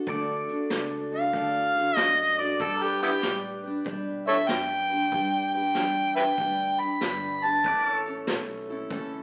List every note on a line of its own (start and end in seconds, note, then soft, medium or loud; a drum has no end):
0.06 0.46 D2 medium
0.06 0.49 D3 medium
0.06 0.49 A3 medium
0.06 0.50 D4 medium
0.06 0.48 F#4 medium
0.06 2.58 A4 medium
0.06 0.46 A4 medium
0.06 2.59 D5 medium
0.06 kick loud
0.06 closed hi-hat medium
0.48 0.70 D4 soft
0.48 0.71 F#4 soft
0.48 0.70 A4 medium
0.48 closed hi-hat medium
0.70 1.32 C#2 medium
0.70 1.12 A3 medium
0.70 1.13 D4 medium
0.70 1.12 F#4 medium
0.70 1.10 A4 medium
0.70 snare loud
0.70 closed hi-hat medium
1.12 1.34 D4 soft
1.12 1.35 F#4 soft
1.12 1.34 A4 soft
1.12 1.96 F5 loud
1.33 1.95 D2 medium
1.33 1.75 D3 medium
1.33 1.76 A3 medium
1.33 1.76 D4 medium
1.33 1.76 F#4 medium
1.33 1.74 A4 medium
1.33 kick loud
1.33 closed hi-hat medium
1.75 1.97 D4 soft
1.75 1.98 F#4 soft
1.75 1.97 A4 medium
1.75 closed hi-hat medium
1.96 2.59 F#2 medium
1.96 2.39 A3 medium
1.96 2.39 D4 medium
1.96 2.39 F#4 medium
1.96 2.42 D#5 loud
1.96 snare loud
1.96 closed hi-hat medium
2.00 2.37 A4 medium
2.38 2.60 D4 soft
2.38 2.61 F#4 soft
2.38 2.60 A4 soft
2.38 2.63 D5 medium
2.38 closed hi-hat medium
2.60 2.99 G2 medium
2.60 3.02 G3 medium
2.60 3.02 D4 medium
2.60 3.02 G4 medium
2.60 2.86 A4 medium
2.60 2.84 A4 medium
2.60 3.00 B4 medium
2.60 7.61 D5 medium
2.60 kick loud
2.60 closed hi-hat medium
2.82 3.02 G4 medium
2.82 7.61 B4 medium
3.01 3.10 B3 medium
3.01 3.22 D4 soft
3.01 3.11 E4 medium
3.01 3.36 G4 medium
3.01 closed hi-hat medium
3.22 3.85 A2 medium
3.22 3.64 G3 medium
3.22 3.65 D4 medium
3.22 3.64 G4 medium
3.22 3.62 B4 medium
3.22 snare loud
3.22 closed hi-hat medium
3.63 3.85 D4 soft
3.63 3.85 G4 soft
3.63 3.85 B4 medium
3.85 4.48 B2 medium
3.85 4.27 G3 medium
3.85 4.27 D4 medium
3.85 4.27 G4 medium
3.85 4.25 B4 medium
3.85 kick loud
3.85 closed hi-hat medium
4.26 4.49 D4 soft
4.26 4.50 G4 soft
4.26 4.35 A4 medium
4.26 4.49 B4 medium
4.26 4.36 C#5 medium
4.26 4.50 E5 loud
4.26 closed hi-hat medium
4.48 5.11 F#2 medium
4.48 4.91 D4 medium
4.48 4.90 G4 medium
4.48 5.50 G5 loud
4.48 snare loud
4.48 closed hi-hat medium
4.52 4.89 B4 medium
4.90 5.12 D4 soft
4.90 5.13 G4 soft
4.90 5.12 B4 medium
4.90 closed hi-hat medium
5.11 5.74 G2 medium
5.11 5.54 G3 medium
5.11 5.55 D4 medium
5.11 5.55 G4 medium
5.11 5.53 B4 medium
5.11 kick loud
5.11 closed hi-hat medium
5.53 5.76 G4 soft
5.53 5.76 B4 medium
5.53 6.15 G5 medium
5.53 closed hi-hat medium
5.58 5.75 D4 soft
5.75 6.37 E2 medium
5.75 6.17 G3 medium
5.75 6.17 D4 medium
5.75 6.17 G4 medium
5.75 6.16 B4 medium
5.75 snare loud
5.75 closed hi-hat medium
6.16 6.39 G4 soft
6.16 6.23 B4 medium
6.16 6.39 B4 medium
6.16 6.25 E5 medium
6.16 6.81 G5 loud
6.20 6.38 D4 soft
6.38 6.77 D2 medium
6.38 6.80 G3 medium
6.38 6.80 D4 medium
6.38 6.80 G4 medium
6.38 6.78 B4 medium
6.38 kick loud
6.38 closed hi-hat medium
6.79 7.03 G4 medium
6.79 7.02 B4 medium
6.79 7.45 B5 medium
6.79 muted upright bass stroke soft
6.79 closed hi-hat medium
6.83 7.02 D4 soft
7.01 7.63 G1 medium
7.01 7.44 G3 medium
7.01 7.44 D4 medium
7.01 snare loud
7.01 closed hi-hat medium
7.05 7.44 G4 medium
7.05 7.42 B4 medium
7.42 7.66 G4 soft
7.42 7.65 B4 medium
7.42 8.05 A5 loud
7.42 closed hi-hat medium
7.47 7.67 D4 soft
7.64 8.26 A1 medium
7.64 8.07 A2 medium
7.64 8.07 E3 medium
7.64 8.07 A3 medium
7.64 8.07 C#4 medium
7.64 8.07 E4 medium
7.64 8.05 A4 medium
7.64 7.91 B4 medium
7.64 7.87 D5 medium
7.64 kick loud
7.64 closed hi-hat medium
7.87 9.23 A4 medium
7.87 9.23 C#5 medium
8.06 8.27 C#4 soft
8.06 8.28 E4 soft
8.06 8.28 A4 soft
8.06 closed hi-hat medium
8.10 8.26 A3 soft
8.27 8.89 B1 medium
8.27 8.69 A3 medium
8.27 8.70 C#4 medium
8.27 8.69 E4 medium
8.27 8.68 A4 medium
8.27 snare loud
8.27 closed hi-hat medium
8.69 8.90 A3 soft
8.69 8.91 C#4 soft
8.69 8.91 E4 medium
8.69 8.91 A4 medium
8.90 9.23 C#2 medium
8.90 9.23 A2 medium
8.90 9.23 E3 medium
8.90 9.23 A3 medium
8.90 9.23 C#4 medium
8.90 9.23 E4 loud
8.90 9.23 A4 loud
8.90 kick loud
8.90 closed hi-hat medium